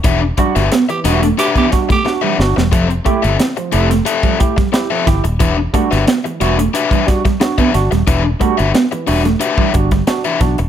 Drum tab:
HH |x-xxxxxxxxxx----|xxxxxxxxxxxxx-xx|x-xxxxxxxxxxxxxx|x-xxxxoxx-xxxxxx|
SD |---oo-----ooo-oo|----o--o---oo-o-|---oo-----ooo-oo|----o--o---oo-o-|
BD |o-o------ooo----|o-o------ooo--o-|o-o------ooo-o--|o-o------ooo--o-|